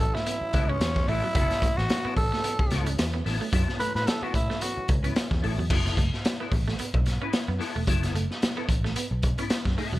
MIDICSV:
0, 0, Header, 1, 9, 480
1, 0, Start_track
1, 0, Key_signature, 3, "minor"
1, 0, Tempo, 543478
1, 1196, Time_signature, 4, 2, 24, 8
1, 8827, End_track
2, 0, Start_track
2, 0, Title_t, "Tenor saxophone"
2, 0, Program_c, 0, 66
2, 0, Note_on_c, 0, 69, 98
2, 127, Note_on_c, 0, 64, 103
2, 140, Note_off_c, 0, 69, 0
2, 608, Note_on_c, 0, 61, 96
2, 621, Note_off_c, 0, 64, 0
2, 958, Note_on_c, 0, 64, 116
2, 971, Note_off_c, 0, 61, 0
2, 1568, Note_on_c, 0, 66, 97
2, 1581, Note_off_c, 0, 64, 0
2, 1908, Note_off_c, 0, 66, 0
2, 1914, Note_on_c, 0, 69, 101
2, 2600, Note_off_c, 0, 69, 0
2, 3354, Note_on_c, 0, 71, 103
2, 3481, Note_off_c, 0, 71, 0
2, 3493, Note_on_c, 0, 71, 106
2, 3597, Note_on_c, 0, 69, 93
2, 3610, Note_off_c, 0, 71, 0
2, 3736, Note_on_c, 0, 66, 83
2, 3749, Note_off_c, 0, 69, 0
2, 3840, Note_off_c, 0, 66, 0
2, 3844, Note_on_c, 0, 64, 90
2, 4083, Note_on_c, 0, 66, 84
2, 4096, Note_off_c, 0, 64, 0
2, 4321, Note_off_c, 0, 66, 0
2, 8827, End_track
3, 0, Start_track
3, 0, Title_t, "Clean electric guitar"
3, 0, Program_c, 1, 27
3, 470, Note_on_c, 1, 59, 86
3, 479, Note_on_c, 1, 64, 87
3, 482, Note_on_c, 1, 69, 104
3, 601, Note_off_c, 1, 69, 0
3, 612, Note_off_c, 1, 64, 0
3, 645, Note_off_c, 1, 59, 0
3, 944, Note_on_c, 1, 59, 95
3, 955, Note_on_c, 1, 64, 95
3, 959, Note_on_c, 1, 69, 91
3, 1073, Note_off_c, 1, 69, 0
3, 1081, Note_off_c, 1, 64, 0
3, 1123, Note_off_c, 1, 59, 0
3, 1193, Note_on_c, 1, 59, 83
3, 1198, Note_on_c, 1, 64, 102
3, 1201, Note_on_c, 1, 69, 103
3, 1418, Note_off_c, 1, 59, 0
3, 1420, Note_off_c, 1, 64, 0
3, 1422, Note_off_c, 1, 69, 0
3, 1811, Note_on_c, 1, 69, 87
3, 1816, Note_on_c, 1, 64, 75
3, 1820, Note_on_c, 1, 59, 74
3, 1901, Note_off_c, 1, 59, 0
3, 1908, Note_off_c, 1, 64, 0
3, 1916, Note_off_c, 1, 69, 0
3, 2395, Note_on_c, 1, 59, 78
3, 2406, Note_on_c, 1, 64, 70
3, 2411, Note_on_c, 1, 69, 87
3, 2522, Note_off_c, 1, 69, 0
3, 2531, Note_off_c, 1, 64, 0
3, 2569, Note_off_c, 1, 59, 0
3, 2870, Note_on_c, 1, 59, 78
3, 2877, Note_on_c, 1, 64, 83
3, 2879, Note_on_c, 1, 69, 92
3, 3001, Note_off_c, 1, 69, 0
3, 3006, Note_off_c, 1, 64, 0
3, 3047, Note_off_c, 1, 59, 0
3, 3117, Note_on_c, 1, 59, 88
3, 3125, Note_on_c, 1, 64, 83
3, 3130, Note_on_c, 1, 69, 92
3, 3340, Note_off_c, 1, 59, 0
3, 3345, Note_off_c, 1, 64, 0
3, 3347, Note_off_c, 1, 69, 0
3, 3731, Note_on_c, 1, 69, 80
3, 3738, Note_on_c, 1, 64, 89
3, 3744, Note_on_c, 1, 59, 64
3, 3823, Note_off_c, 1, 59, 0
3, 3827, Note_off_c, 1, 69, 0
3, 3828, Note_off_c, 1, 64, 0
3, 4440, Note_on_c, 1, 71, 78
3, 4443, Note_on_c, 1, 64, 63
3, 4451, Note_on_c, 1, 59, 59
3, 4600, Note_off_c, 1, 71, 0
3, 4602, Note_off_c, 1, 64, 0
3, 4606, Note_off_c, 1, 59, 0
3, 4789, Note_on_c, 1, 59, 74
3, 4794, Note_on_c, 1, 64, 93
3, 4800, Note_on_c, 1, 69, 100
3, 4922, Note_off_c, 1, 69, 0
3, 4928, Note_off_c, 1, 64, 0
3, 4966, Note_off_c, 1, 59, 0
3, 5039, Note_on_c, 1, 59, 79
3, 5048, Note_on_c, 1, 64, 99
3, 5056, Note_on_c, 1, 69, 91
3, 5261, Note_off_c, 1, 59, 0
3, 5266, Note_off_c, 1, 64, 0
3, 5270, Note_off_c, 1, 69, 0
3, 5655, Note_on_c, 1, 69, 79
3, 5662, Note_on_c, 1, 64, 74
3, 5668, Note_on_c, 1, 59, 64
3, 5748, Note_off_c, 1, 59, 0
3, 5754, Note_off_c, 1, 69, 0
3, 5755, Note_off_c, 1, 64, 0
3, 6368, Note_on_c, 1, 71, 93
3, 6375, Note_on_c, 1, 64, 74
3, 6381, Note_on_c, 1, 59, 64
3, 6524, Note_off_c, 1, 71, 0
3, 6527, Note_off_c, 1, 64, 0
3, 6530, Note_off_c, 1, 59, 0
3, 6699, Note_on_c, 1, 59, 91
3, 6704, Note_on_c, 1, 64, 93
3, 6709, Note_on_c, 1, 69, 101
3, 6838, Note_off_c, 1, 69, 0
3, 6851, Note_off_c, 1, 64, 0
3, 6880, Note_off_c, 1, 59, 0
3, 6947, Note_on_c, 1, 59, 91
3, 6955, Note_on_c, 1, 64, 92
3, 6961, Note_on_c, 1, 69, 97
3, 7174, Note_off_c, 1, 59, 0
3, 7178, Note_off_c, 1, 64, 0
3, 7181, Note_off_c, 1, 69, 0
3, 7562, Note_on_c, 1, 69, 98
3, 7569, Note_on_c, 1, 64, 74
3, 7570, Note_on_c, 1, 59, 70
3, 7652, Note_off_c, 1, 59, 0
3, 7660, Note_off_c, 1, 64, 0
3, 7660, Note_off_c, 1, 69, 0
3, 8285, Note_on_c, 1, 71, 78
3, 8289, Note_on_c, 1, 64, 74
3, 8294, Note_on_c, 1, 59, 65
3, 8441, Note_off_c, 1, 71, 0
3, 8443, Note_off_c, 1, 64, 0
3, 8445, Note_off_c, 1, 59, 0
3, 8626, Note_on_c, 1, 59, 84
3, 8636, Note_on_c, 1, 64, 88
3, 8641, Note_on_c, 1, 69, 82
3, 8748, Note_off_c, 1, 69, 0
3, 8754, Note_off_c, 1, 64, 0
3, 8813, Note_off_c, 1, 59, 0
3, 8827, End_track
4, 0, Start_track
4, 0, Title_t, "Clean electric guitar"
4, 0, Program_c, 2, 27
4, 130, Note_on_c, 2, 57, 70
4, 193, Note_off_c, 2, 57, 0
4, 236, Note_on_c, 2, 59, 80
4, 317, Note_off_c, 2, 59, 0
4, 613, Note_on_c, 2, 61, 82
4, 676, Note_off_c, 2, 61, 0
4, 958, Note_on_c, 2, 57, 71
4, 1039, Note_off_c, 2, 57, 0
4, 1095, Note_on_c, 2, 54, 79
4, 1158, Note_off_c, 2, 54, 0
4, 1199, Note_on_c, 2, 54, 88
4, 1279, Note_off_c, 2, 54, 0
4, 1440, Note_on_c, 2, 57, 78
4, 1521, Note_off_c, 2, 57, 0
4, 1810, Note_on_c, 2, 59, 81
4, 1874, Note_off_c, 2, 59, 0
4, 2050, Note_on_c, 2, 57, 81
4, 2115, Note_off_c, 2, 57, 0
4, 2159, Note_on_c, 2, 59, 72
4, 2239, Note_off_c, 2, 59, 0
4, 2532, Note_on_c, 2, 61, 82
4, 2596, Note_off_c, 2, 61, 0
4, 2770, Note_on_c, 2, 59, 76
4, 2835, Note_off_c, 2, 59, 0
4, 3012, Note_on_c, 2, 57, 79
4, 3076, Note_off_c, 2, 57, 0
4, 3121, Note_on_c, 2, 54, 93
4, 3201, Note_off_c, 2, 54, 0
4, 3359, Note_on_c, 2, 57, 87
4, 3440, Note_off_c, 2, 57, 0
4, 3736, Note_on_c, 2, 59, 68
4, 3798, Note_off_c, 2, 59, 0
4, 3974, Note_on_c, 2, 57, 73
4, 4038, Note_off_c, 2, 57, 0
4, 4081, Note_on_c, 2, 59, 77
4, 4161, Note_off_c, 2, 59, 0
4, 4453, Note_on_c, 2, 61, 79
4, 4517, Note_off_c, 2, 61, 0
4, 4803, Note_on_c, 2, 57, 67
4, 4882, Note_off_c, 2, 57, 0
4, 4939, Note_on_c, 2, 54, 77
4, 5001, Note_off_c, 2, 54, 0
4, 5042, Note_on_c, 2, 54, 80
4, 5122, Note_off_c, 2, 54, 0
4, 5283, Note_on_c, 2, 57, 76
4, 5363, Note_off_c, 2, 57, 0
4, 5655, Note_on_c, 2, 59, 69
4, 5718, Note_off_c, 2, 59, 0
4, 5896, Note_on_c, 2, 57, 75
4, 5958, Note_off_c, 2, 57, 0
4, 6003, Note_on_c, 2, 59, 75
4, 6083, Note_off_c, 2, 59, 0
4, 6373, Note_on_c, 2, 61, 85
4, 6436, Note_off_c, 2, 61, 0
4, 6609, Note_on_c, 2, 59, 73
4, 6674, Note_off_c, 2, 59, 0
4, 6854, Note_on_c, 2, 57, 79
4, 6917, Note_off_c, 2, 57, 0
4, 6960, Note_on_c, 2, 54, 83
4, 7040, Note_off_c, 2, 54, 0
4, 7203, Note_on_c, 2, 57, 76
4, 7282, Note_off_c, 2, 57, 0
4, 7570, Note_on_c, 2, 59, 80
4, 7633, Note_off_c, 2, 59, 0
4, 7811, Note_on_c, 2, 57, 84
4, 7874, Note_off_c, 2, 57, 0
4, 7915, Note_on_c, 2, 59, 79
4, 7996, Note_off_c, 2, 59, 0
4, 8291, Note_on_c, 2, 61, 82
4, 8354, Note_off_c, 2, 61, 0
4, 8637, Note_on_c, 2, 57, 76
4, 8717, Note_off_c, 2, 57, 0
4, 8772, Note_on_c, 2, 54, 84
4, 8827, Note_off_c, 2, 54, 0
4, 8827, End_track
5, 0, Start_track
5, 0, Title_t, "Tonewheel organ"
5, 0, Program_c, 3, 16
5, 0, Note_on_c, 3, 52, 66
5, 0, Note_on_c, 3, 54, 63
5, 0, Note_on_c, 3, 57, 63
5, 0, Note_on_c, 3, 61, 74
5, 4998, Note_off_c, 3, 61, 0
5, 4999, Note_off_c, 3, 54, 0
5, 5000, Note_off_c, 3, 52, 0
5, 5000, Note_off_c, 3, 57, 0
5, 8827, End_track
6, 0, Start_track
6, 0, Title_t, "Picked electric bass"
6, 0, Program_c, 4, 34
6, 0, Note_on_c, 4, 33, 88
6, 104, Note_off_c, 4, 33, 0
6, 475, Note_on_c, 4, 37, 88
6, 673, Note_off_c, 4, 37, 0
6, 708, Note_on_c, 4, 40, 86
6, 909, Note_off_c, 4, 40, 0
6, 952, Note_on_c, 4, 33, 102
6, 1064, Note_off_c, 4, 33, 0
6, 1195, Note_on_c, 4, 30, 116
6, 1306, Note_off_c, 4, 30, 0
6, 1572, Note_on_c, 4, 33, 89
6, 1659, Note_off_c, 4, 33, 0
6, 1913, Note_on_c, 4, 33, 85
6, 2025, Note_off_c, 4, 33, 0
6, 2399, Note_on_c, 4, 37, 91
6, 2596, Note_off_c, 4, 37, 0
6, 2638, Note_on_c, 4, 40, 81
6, 2835, Note_off_c, 4, 40, 0
6, 2879, Note_on_c, 4, 33, 101
6, 2989, Note_off_c, 4, 33, 0
6, 3115, Note_on_c, 4, 42, 114
6, 3227, Note_off_c, 4, 42, 0
6, 3491, Note_on_c, 4, 45, 89
6, 3578, Note_off_c, 4, 45, 0
6, 3834, Note_on_c, 4, 45, 103
6, 3946, Note_off_c, 4, 45, 0
6, 4320, Note_on_c, 4, 37, 89
6, 4516, Note_off_c, 4, 37, 0
6, 4691, Note_on_c, 4, 40, 94
6, 4779, Note_off_c, 4, 40, 0
6, 4803, Note_on_c, 4, 33, 90
6, 4911, Note_off_c, 4, 33, 0
6, 4933, Note_on_c, 4, 40, 79
6, 5019, Note_off_c, 4, 40, 0
6, 5037, Note_on_c, 4, 30, 104
6, 5235, Note_off_c, 4, 30, 0
6, 5273, Note_on_c, 4, 30, 110
6, 5385, Note_off_c, 4, 30, 0
6, 5757, Note_on_c, 4, 33, 89
6, 5954, Note_off_c, 4, 33, 0
6, 6129, Note_on_c, 4, 35, 93
6, 6327, Note_off_c, 4, 35, 0
6, 6610, Note_on_c, 4, 42, 99
6, 6697, Note_off_c, 4, 42, 0
6, 6852, Note_on_c, 4, 28, 82
6, 6938, Note_off_c, 4, 28, 0
6, 6955, Note_on_c, 4, 30, 117
6, 7152, Note_off_c, 4, 30, 0
6, 7195, Note_on_c, 4, 30, 102
6, 7306, Note_off_c, 4, 30, 0
6, 7672, Note_on_c, 4, 33, 87
6, 7870, Note_off_c, 4, 33, 0
6, 8046, Note_on_c, 4, 35, 85
6, 8244, Note_off_c, 4, 35, 0
6, 8527, Note_on_c, 4, 42, 90
6, 8614, Note_off_c, 4, 42, 0
6, 8766, Note_on_c, 4, 28, 99
6, 8827, Note_off_c, 4, 28, 0
6, 8827, End_track
7, 0, Start_track
7, 0, Title_t, "Muted clean electric guitar strokes"
7, 4, Note_on_c, 9, 29, 60
7, 92, Note_off_c, 9, 29, 0
7, 128, Note_on_c, 9, 29, 45
7, 216, Note_off_c, 9, 29, 0
7, 370, Note_on_c, 9, 29, 41
7, 458, Note_off_c, 9, 29, 0
7, 478, Note_on_c, 9, 29, 47
7, 566, Note_off_c, 9, 29, 0
7, 612, Note_on_c, 9, 29, 51
7, 700, Note_off_c, 9, 29, 0
7, 720, Note_on_c, 9, 29, 47
7, 809, Note_off_c, 9, 29, 0
7, 849, Note_on_c, 9, 29, 40
7, 937, Note_off_c, 9, 29, 0
7, 1084, Note_on_c, 9, 29, 49
7, 1172, Note_off_c, 9, 29, 0
7, 1331, Note_on_c, 9, 29, 47
7, 1419, Note_off_c, 9, 29, 0
7, 1576, Note_on_c, 9, 29, 45
7, 1664, Note_off_c, 9, 29, 0
7, 1681, Note_on_c, 9, 29, 39
7, 1769, Note_off_c, 9, 29, 0
7, 1912, Note_on_c, 9, 29, 51
7, 2000, Note_off_c, 9, 29, 0
7, 2056, Note_on_c, 9, 29, 48
7, 2144, Note_off_c, 9, 29, 0
7, 2150, Note_on_c, 9, 29, 45
7, 2238, Note_off_c, 9, 29, 0
7, 2289, Note_on_c, 9, 29, 51
7, 2378, Note_off_c, 9, 29, 0
7, 2399, Note_on_c, 9, 29, 47
7, 2488, Note_off_c, 9, 29, 0
7, 2533, Note_on_c, 9, 29, 51
7, 2621, Note_off_c, 9, 29, 0
7, 2766, Note_on_c, 9, 29, 38
7, 2854, Note_off_c, 9, 29, 0
7, 2879, Note_on_c, 9, 29, 45
7, 2967, Note_off_c, 9, 29, 0
7, 3012, Note_on_c, 9, 29, 55
7, 3100, Note_off_c, 9, 29, 0
7, 3253, Note_on_c, 9, 29, 42
7, 3341, Note_off_c, 9, 29, 0
7, 3496, Note_on_c, 9, 29, 53
7, 3584, Note_off_c, 9, 29, 0
7, 3602, Note_on_c, 9, 29, 36
7, 3690, Note_off_c, 9, 29, 0
7, 3833, Note_on_c, 9, 29, 51
7, 3922, Note_off_c, 9, 29, 0
7, 3971, Note_on_c, 9, 29, 43
7, 4060, Note_off_c, 9, 29, 0
7, 4065, Note_on_c, 9, 29, 40
7, 4153, Note_off_c, 9, 29, 0
7, 4207, Note_on_c, 9, 29, 53
7, 4295, Note_off_c, 9, 29, 0
7, 4321, Note_on_c, 9, 29, 49
7, 4409, Note_off_c, 9, 29, 0
7, 4562, Note_on_c, 9, 29, 48
7, 4651, Note_off_c, 9, 29, 0
7, 4684, Note_on_c, 9, 29, 46
7, 4773, Note_off_c, 9, 29, 0
7, 4932, Note_on_c, 9, 29, 44
7, 5021, Note_off_c, 9, 29, 0
7, 5176, Note_on_c, 9, 29, 44
7, 5264, Note_off_c, 9, 29, 0
7, 5416, Note_on_c, 9, 29, 44
7, 5504, Note_off_c, 9, 29, 0
7, 5520, Note_on_c, 9, 29, 41
7, 5609, Note_off_c, 9, 29, 0
7, 5759, Note_on_c, 9, 29, 40
7, 5847, Note_off_c, 9, 29, 0
7, 5890, Note_on_c, 9, 29, 53
7, 5978, Note_off_c, 9, 29, 0
7, 5996, Note_on_c, 9, 29, 40
7, 6084, Note_off_c, 9, 29, 0
7, 6133, Note_on_c, 9, 29, 46
7, 6222, Note_off_c, 9, 29, 0
7, 6241, Note_on_c, 9, 29, 47
7, 6329, Note_off_c, 9, 29, 0
7, 6602, Note_on_c, 9, 29, 49
7, 6690, Note_off_c, 9, 29, 0
7, 6718, Note_on_c, 9, 29, 45
7, 6806, Note_off_c, 9, 29, 0
7, 6848, Note_on_c, 9, 29, 51
7, 6936, Note_off_c, 9, 29, 0
7, 7093, Note_on_c, 9, 29, 49
7, 7182, Note_off_c, 9, 29, 0
7, 7328, Note_on_c, 9, 29, 54
7, 7417, Note_off_c, 9, 29, 0
7, 7433, Note_on_c, 9, 29, 34
7, 7521, Note_off_c, 9, 29, 0
7, 7662, Note_on_c, 9, 29, 38
7, 7751, Note_off_c, 9, 29, 0
7, 7801, Note_on_c, 9, 29, 46
7, 7889, Note_off_c, 9, 29, 0
7, 7907, Note_on_c, 9, 29, 47
7, 7995, Note_off_c, 9, 29, 0
7, 8049, Note_on_c, 9, 29, 43
7, 8137, Note_off_c, 9, 29, 0
7, 8156, Note_on_c, 9, 29, 50
7, 8244, Note_off_c, 9, 29, 0
7, 8401, Note_on_c, 9, 29, 51
7, 8489, Note_off_c, 9, 29, 0
7, 8521, Note_on_c, 9, 29, 43
7, 8610, Note_off_c, 9, 29, 0
7, 8759, Note_on_c, 9, 29, 51
7, 8827, Note_off_c, 9, 29, 0
7, 8827, End_track
8, 0, Start_track
8, 0, Title_t, "Muted picked electric bass strokes"
8, 366, Note_on_c, 9, 29, 49
8, 454, Note_off_c, 9, 29, 0
8, 1811, Note_on_c, 9, 29, 49
8, 1899, Note_off_c, 9, 29, 0
8, 2291, Note_on_c, 9, 29, 47
8, 2379, Note_off_c, 9, 29, 0
8, 3729, Note_on_c, 9, 29, 49
8, 3817, Note_off_c, 9, 29, 0
8, 4216, Note_on_c, 9, 29, 47
8, 4304, Note_off_c, 9, 29, 0
8, 6002, Note_on_c, 9, 29, 45
8, 6090, Note_off_c, 9, 29, 0
8, 7913, Note_on_c, 9, 29, 47
8, 8001, Note_off_c, 9, 29, 0
8, 8827, End_track
9, 0, Start_track
9, 0, Title_t, "Drums"
9, 138, Note_on_c, 9, 38, 39
9, 226, Note_off_c, 9, 38, 0
9, 232, Note_on_c, 9, 42, 105
9, 320, Note_off_c, 9, 42, 0
9, 468, Note_on_c, 9, 42, 73
9, 476, Note_on_c, 9, 36, 96
9, 557, Note_off_c, 9, 42, 0
9, 564, Note_off_c, 9, 36, 0
9, 712, Note_on_c, 9, 42, 94
9, 718, Note_on_c, 9, 38, 112
9, 801, Note_off_c, 9, 42, 0
9, 806, Note_off_c, 9, 38, 0
9, 848, Note_on_c, 9, 36, 95
9, 853, Note_on_c, 9, 38, 32
9, 936, Note_off_c, 9, 36, 0
9, 942, Note_off_c, 9, 38, 0
9, 953, Note_on_c, 9, 46, 76
9, 1041, Note_off_c, 9, 46, 0
9, 1191, Note_on_c, 9, 42, 105
9, 1193, Note_on_c, 9, 36, 116
9, 1279, Note_off_c, 9, 42, 0
9, 1281, Note_off_c, 9, 36, 0
9, 1327, Note_on_c, 9, 42, 50
9, 1332, Note_on_c, 9, 38, 39
9, 1416, Note_off_c, 9, 42, 0
9, 1421, Note_off_c, 9, 38, 0
9, 1431, Note_on_c, 9, 36, 85
9, 1436, Note_on_c, 9, 42, 71
9, 1520, Note_off_c, 9, 36, 0
9, 1524, Note_off_c, 9, 42, 0
9, 1571, Note_on_c, 9, 38, 31
9, 1660, Note_off_c, 9, 38, 0
9, 1673, Note_on_c, 9, 42, 80
9, 1682, Note_on_c, 9, 38, 95
9, 1762, Note_off_c, 9, 42, 0
9, 1770, Note_off_c, 9, 38, 0
9, 1913, Note_on_c, 9, 36, 91
9, 1920, Note_on_c, 9, 46, 61
9, 2002, Note_off_c, 9, 36, 0
9, 2008, Note_off_c, 9, 46, 0
9, 2058, Note_on_c, 9, 38, 38
9, 2146, Note_off_c, 9, 38, 0
9, 2154, Note_on_c, 9, 42, 99
9, 2243, Note_off_c, 9, 42, 0
9, 2289, Note_on_c, 9, 36, 99
9, 2378, Note_off_c, 9, 36, 0
9, 2389, Note_on_c, 9, 42, 73
9, 2400, Note_on_c, 9, 38, 35
9, 2477, Note_off_c, 9, 42, 0
9, 2489, Note_off_c, 9, 38, 0
9, 2528, Note_on_c, 9, 42, 58
9, 2616, Note_off_c, 9, 42, 0
9, 2636, Note_on_c, 9, 42, 101
9, 2641, Note_on_c, 9, 38, 114
9, 2724, Note_off_c, 9, 42, 0
9, 2730, Note_off_c, 9, 38, 0
9, 2880, Note_on_c, 9, 46, 88
9, 2884, Note_on_c, 9, 38, 36
9, 2968, Note_off_c, 9, 46, 0
9, 2972, Note_off_c, 9, 38, 0
9, 3115, Note_on_c, 9, 36, 115
9, 3115, Note_on_c, 9, 42, 101
9, 3203, Note_off_c, 9, 42, 0
9, 3204, Note_off_c, 9, 36, 0
9, 3258, Note_on_c, 9, 38, 36
9, 3347, Note_off_c, 9, 38, 0
9, 3357, Note_on_c, 9, 42, 75
9, 3445, Note_off_c, 9, 42, 0
9, 3492, Note_on_c, 9, 38, 32
9, 3580, Note_off_c, 9, 38, 0
9, 3596, Note_on_c, 9, 42, 89
9, 3605, Note_on_c, 9, 38, 112
9, 3685, Note_off_c, 9, 42, 0
9, 3693, Note_off_c, 9, 38, 0
9, 3834, Note_on_c, 9, 36, 88
9, 3840, Note_on_c, 9, 42, 79
9, 3922, Note_off_c, 9, 36, 0
9, 3929, Note_off_c, 9, 42, 0
9, 3977, Note_on_c, 9, 38, 40
9, 4065, Note_off_c, 9, 38, 0
9, 4073, Note_on_c, 9, 42, 97
9, 4161, Note_off_c, 9, 42, 0
9, 4311, Note_on_c, 9, 42, 69
9, 4318, Note_on_c, 9, 36, 107
9, 4399, Note_off_c, 9, 42, 0
9, 4406, Note_off_c, 9, 36, 0
9, 4451, Note_on_c, 9, 42, 62
9, 4539, Note_off_c, 9, 42, 0
9, 4555, Note_on_c, 9, 42, 97
9, 4561, Note_on_c, 9, 38, 113
9, 4644, Note_off_c, 9, 42, 0
9, 4649, Note_off_c, 9, 38, 0
9, 4690, Note_on_c, 9, 36, 90
9, 4697, Note_on_c, 9, 38, 37
9, 4778, Note_off_c, 9, 36, 0
9, 4786, Note_off_c, 9, 38, 0
9, 4801, Note_on_c, 9, 46, 87
9, 4889, Note_off_c, 9, 46, 0
9, 5035, Note_on_c, 9, 36, 108
9, 5036, Note_on_c, 9, 49, 110
9, 5124, Note_off_c, 9, 36, 0
9, 5124, Note_off_c, 9, 49, 0
9, 5176, Note_on_c, 9, 42, 54
9, 5181, Note_on_c, 9, 38, 36
9, 5265, Note_off_c, 9, 42, 0
9, 5270, Note_off_c, 9, 38, 0
9, 5274, Note_on_c, 9, 36, 83
9, 5283, Note_on_c, 9, 42, 70
9, 5363, Note_off_c, 9, 36, 0
9, 5371, Note_off_c, 9, 42, 0
9, 5420, Note_on_c, 9, 38, 31
9, 5509, Note_off_c, 9, 38, 0
9, 5517, Note_on_c, 9, 42, 86
9, 5526, Note_on_c, 9, 38, 112
9, 5606, Note_off_c, 9, 42, 0
9, 5614, Note_off_c, 9, 38, 0
9, 5755, Note_on_c, 9, 36, 97
9, 5764, Note_on_c, 9, 46, 66
9, 5844, Note_off_c, 9, 36, 0
9, 5852, Note_off_c, 9, 46, 0
9, 5902, Note_on_c, 9, 38, 38
9, 5990, Note_off_c, 9, 38, 0
9, 5995, Note_on_c, 9, 42, 107
9, 6083, Note_off_c, 9, 42, 0
9, 6130, Note_on_c, 9, 36, 100
9, 6218, Note_off_c, 9, 36, 0
9, 6232, Note_on_c, 9, 42, 73
9, 6243, Note_on_c, 9, 38, 35
9, 6320, Note_off_c, 9, 42, 0
9, 6332, Note_off_c, 9, 38, 0
9, 6473, Note_on_c, 9, 42, 90
9, 6478, Note_on_c, 9, 38, 119
9, 6561, Note_off_c, 9, 42, 0
9, 6567, Note_off_c, 9, 38, 0
9, 6715, Note_on_c, 9, 46, 78
9, 6719, Note_on_c, 9, 38, 34
9, 6804, Note_off_c, 9, 46, 0
9, 6808, Note_off_c, 9, 38, 0
9, 6954, Note_on_c, 9, 36, 97
9, 6956, Note_on_c, 9, 42, 92
9, 7043, Note_off_c, 9, 36, 0
9, 7044, Note_off_c, 9, 42, 0
9, 7092, Note_on_c, 9, 42, 56
9, 7097, Note_on_c, 9, 38, 39
9, 7181, Note_off_c, 9, 42, 0
9, 7186, Note_off_c, 9, 38, 0
9, 7200, Note_on_c, 9, 42, 71
9, 7288, Note_off_c, 9, 42, 0
9, 7337, Note_on_c, 9, 38, 30
9, 7425, Note_off_c, 9, 38, 0
9, 7438, Note_on_c, 9, 42, 89
9, 7446, Note_on_c, 9, 38, 109
9, 7526, Note_off_c, 9, 42, 0
9, 7535, Note_off_c, 9, 38, 0
9, 7672, Note_on_c, 9, 36, 97
9, 7677, Note_on_c, 9, 42, 83
9, 7760, Note_off_c, 9, 36, 0
9, 7766, Note_off_c, 9, 42, 0
9, 7815, Note_on_c, 9, 38, 44
9, 7904, Note_off_c, 9, 38, 0
9, 7912, Note_on_c, 9, 42, 110
9, 8000, Note_off_c, 9, 42, 0
9, 8147, Note_on_c, 9, 42, 71
9, 8155, Note_on_c, 9, 36, 87
9, 8235, Note_off_c, 9, 42, 0
9, 8243, Note_off_c, 9, 36, 0
9, 8284, Note_on_c, 9, 42, 61
9, 8372, Note_off_c, 9, 42, 0
9, 8389, Note_on_c, 9, 42, 95
9, 8394, Note_on_c, 9, 38, 124
9, 8477, Note_off_c, 9, 42, 0
9, 8483, Note_off_c, 9, 38, 0
9, 8527, Note_on_c, 9, 36, 88
9, 8535, Note_on_c, 9, 38, 33
9, 8615, Note_off_c, 9, 36, 0
9, 8623, Note_off_c, 9, 38, 0
9, 8637, Note_on_c, 9, 46, 81
9, 8725, Note_off_c, 9, 46, 0
9, 8827, End_track
0, 0, End_of_file